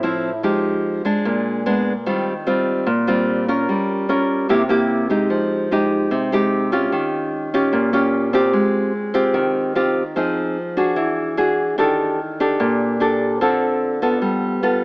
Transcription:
Already playing: A2
0.03 F3 C4 E4
0.43 F3 G#3 D#4 G4
1.05 G#3 D4
1.25 A#2
1.66 G#3 B3 D4
2.06 D#3 G3 C4 F4
2.47 G3 C4 F4
2.87 A#2
3.07 G3 C4 F4
3.48 C#4 F4 A#4
3.69 G3
4.09 C#4 F4 A#4
4.49 C3 A#3 E4 G4
4.69 A#3 E4 G4
5.10 G#3 D#4 G4
5.30 F3
5.71 G#3 D#4 G4
6.11 C3
6.32 G#3 D#4 G4
6.72 C#4 F4 G4
6.92 D#3
7.54 C#4 F4 G4
7.73 A#2
7.93 C#4 F4 G4
8.33 C4 F4 G4
8.53 G#3
9.14 C4 F4 G4
9.34 D#3
9.75 C4 F4 G4
10.16 F3 C4 D#4 G#4
10.77 D4 F#4 G#4
10.96 E3
11.37 D4 F#4 G#4
11.78 D#3 D4 G4 A4
12.40 D4 G4 A4
12.60 A#2
13.00 D4 G4 A4
13.41 D3 C4 F4 A4
14.02 B3 F4 A4
14.22 G3
14.63 B3 F4 A4

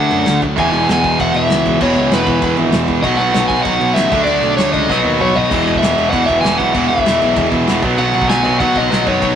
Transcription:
Already playing: D3 A3 D4 F#5
0.10 F#2 D3 F#3 A3 D4, crash
0.26 D2 D3 F#3 A3 D4, snare, crash
0.42 D2 D3 F#3 A3 D4, kick, crash
0.57 E1 E2 B2 E3 G#3 B3 E4 G#5, kick, crash
0.72 E1 E3 G#3 B3 E4, crash
0.88 E1 E3 G#3 B3 E4, snare, crash
0.92 G#5
1.03 E3 G#3 B3 E4, kick, crash
1.19 E1 E3 G#3 B3 E4 F#5, kick, crash
1.34 E1 E3 G#3 B3 E4 E5, crash
1.50 C#2 E3 G#3 B3 E4, snare, crash
1.65 E3 G#3 B3 E4, kick, crash
1.79 E1 E2 B2 E3 G#3 B3 E4 C#5, kick, crash
1.94 C#2 E3 G#3 B3 E4, crash
2.10 E1 E3 G#3 B3 E4 B4, snare, crash
2.25 E1 E3 G#3 B3 E4, kick, crash
2.41 E1 E3 G#3 B3 E4, kick, crash
2.57 G#1 E3 G#3 B3 E4, crash
2.71 E1 E3 G#3 B3 E4, snare, crash
2.87 E1 E3 G#3 B3 E4, kick, crash
3.02 B1 B2 F#3 B3 D#4 D#5, kick, crash
3.17 B1 B2 F#3 B3 D#4 F#5, crash
3.33 B1 B2 F#3 B3 D#4, snare, crash
3.48 B2 F#3 B3 D#4 G#5, kick, crash
3.63 B1 B2 F#3 B3 D#4 F#5, kick, crash
3.80 B1 B2 F#3 B3 D#4, crash
3.94 A1 B2 F#3 B3 D#4 E5, snare, crash
4.10 D2 D3 F#3 A3 D4, kick, crash
4.24 D2 A3 D4 D5, crash
4.28 D3 F#3
4.42 B1 D3 F#3 A3 D4, crash
4.57 D2 D3 F#3 A3 D4 C#5, snare, crash
4.72 C#2 D3 F#3 A3 D4 D#5, kick, crash
4.88 B1 B2 F#3 B3 D#4, kick, snare
5.04 D#2 B2 F#3 B3 D#4
5.19 B1 B2 F#3 B3 D#4 C#5, mid tom
5.34 B1 B2 F#3 B3 D#4 D#5, floor tom
5.48 E1 E2 B2 E3 G#3 B3 E4, kick, crash
5.66 E1, crash
5.74 E5, kick
5.82 E1 E2 B2 E3, snare, crash
5.96 E1 E2 B2 E3, crash
6.10 E2 B2 E3 F#5, kick, crash
6.26 E1 E3 G#3 B3 E4 E5, kick, crash
6.41 E1 E2 B2 E3 G#3 B3 E4 G#5, snare, crash
6.45 E3
6.57 B1 E2 B2 E3 F#5, kick, crash
6.73 E1 E2 B2 E3 G#3 B3 E4, kick, crash
6.89 E1 E5, crash
6.98 kick
7.06 E1 E2 B2 E3, snare, crash
7.20 B1 E2 B2 E3, crash
7.36 E1 E2 B2 E3, kick, crash
7.50 E1 E3 G#3 B3 E4, kick, crash
7.66 E1 E2 B2 E3 G#3 B3 E4, snare, crash
7.82 B1 B2 D#3 F#3 B3 D#4, kick, crash
7.98 B1 B2 F#3 B3 F#5, crash
8.14 B1 F#5, crash
8.22 kick
8.29 B1 B2 F#3 B3 G#5, snare, crash
8.45 B1 B2 F#3 B3, crash
8.60 B2 D#3 F#3 B3 D#4 F#5, kick, crash
8.76 B1 B2 D#3 F#3 B3 D#4 D#5, kick, crash
8.90 B1 B2 F#3 B3, snare, crash
9.05 F#2 B2 D#3 F#3 B3 D#4 C#5, kick, crash
9.20 B1 B2 F#3 B3, kick, crash

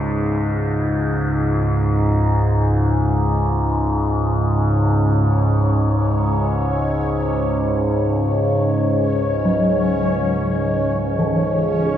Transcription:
Already playing: C#2 G#2 G#3
4.40 C#4 C#5
9.45 F#3
11.19 E3
11.87 G#4

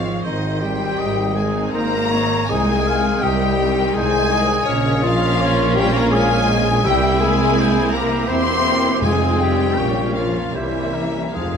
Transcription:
Already playing: G#1 F3 G#3 C4 C#5 F5
0.24 G#1 D#3 D#4 C5 D#5
0.61 D#3 G3 C4 D#4 G4 G5
0.99 G#1 D#5
1.35 D#3 G#3 C4 D#4 G#4 G#5
1.71 G#1 A#3 A#4 C5 A#5
2.10 D#3 C4 D#4 C#5
2.47 C2 D#3 G#3 C4 D#4 G#4 D#5 G#5
2.84 D#3 C4 D#4 F5
3.22 C2 G3 G4 D#5 G5
3.57 D#3 C4 D#4
3.93 C2 G#3 G#4 C5 G#5
4.28 D#3 C4 D#4 D#5
4.64 A#1 C#3 A#3 C#4 F4 C#5
5.02 F3 F4 F5
5.41 C#5
5.74 G3 G4 G5
5.92 A#3 A#4
5.96 A#5
6.08 G#3 G#4
6.13 F5 G#5
6.51 D#5
6.82 C2 C3 G3 E4 G4 E5
6.86 C2 A#3 C4 G5
7.18 G#3 G#4
7.23 G#5
7.59 C5
7.91 A#3 A#4 A#5
7.96 G4
8.27 E1 A#3 C4 E4 C5 C6
8.31 E2
9.01 F1 F2 G#3 C4 F4 G#4 G#5
9.05 G#4
9.39 G3 G4 G5
9.76 A#1 A#3 C#4 F4 C#5
10.14 F3 F4 F5
10.50 E3 G3 A#3
10.54 C2 C#4 E4 C5 E5
10.94 A#4
11.34 F1 F2 F3 G#3 C4 F4 G#4 F5
11.45 F2
11.54 F2

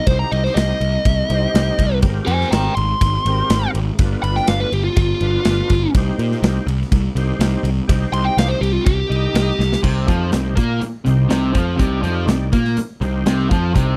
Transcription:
0.07 C2 D#4 C5, kick, ride
0.11 G4
0.19 A#5
0.31 C2 D#5, ride
0.44 C5, snare
0.55 C2 D#5, snare, ride
0.81 C2, ride
1.05 C2, kick, ride
1.30 C2 D#4 G4 C5, ride
1.54 C2, snare, ride
1.78 C2, kick, ride
2.02 G#1 C4 G4 A#4, kick, ride
2.26 F2 C5 G#5, ride
2.41 snare
2.51 G#1 G5 A#5, snare, ride
2.75 G#1 C6, ride
3.01 G#1, kick, ride
3.25 G#1 C4 G4 A#4, ride
3.50 G#1, snare, ride
3.74 G#1, ride
3.99 G1 D4 F4 B4, kick, ride
4.23 G1 B5, ride
4.36 G5, snare
4.47 G1 F5, snare, ride
4.60 B4
4.72 G1 G4, ride
4.84 F4
4.96 G1 F4, kick, ride
5.21 G1 D4 F4 B4, ride
5.45 G1, snare, ride
5.70 G1, kick, ride
5.94 C2 D#4 G4 C5, kick, ride
6.19 A#2, ride
6.32 snare
6.42 C2, snare, ride
6.67 C2, ride
6.82 snare
6.92 C2, kick, ride
7.15 C2 D#4 G4 C5, ride
7.39 C2, snare, ride
7.63 C2, ride
7.88 C2 D#4 G4 C5, kick, ride
8.12 C2 C6, ride
8.25 G5
8.37 C2 F5, snare, ride
8.48 C5
8.61 C2 G4, ride
8.73 F4
8.86 C2 G4, kick, ride
9.09 C2 D#4 G4 D#5, ride
9.34 C2, snare, ride
9.59 C2, snare
9.73 snare
9.82 C2 C3 D#4 G4 C5, kick, crash
10.08 F2 F3, kick, closed hi-hat
10.32 C2 C3, snare, closed hi-hat
10.56 A#2 A#3, kick, closed hi-hat
10.80 muted distorted electric guitar stroke, muted picked electric bass stroke, closed hi-hat
11.05 C2 C3 D#4 G4 C5, closed hi-hat
11.28 C2 C3, snare, closed hi-hat
11.53 F2 F3, kick, closed hi-hat
11.77 C2 C3 D#4 G4 D5, kick, closed hi-hat
12.02 F2 F3, closed hi-hat
12.27 C2 C3, snare, closed hi-hat
12.52 A#2 A#3, kick, closed hi-hat
12.65 snare
12.77 muted distorted electric guitar stroke, muted picked electric bass stroke, closed hi-hat
13.01 C2 C3 D#4 G4 C5, closed hi-hat
13.26 C2 C3, snare, closed hi-hat
13.50 F2 F3, kick, closed hi-hat
13.74 C2 C3 D#4 G4 C5, kick, closed hi-hat

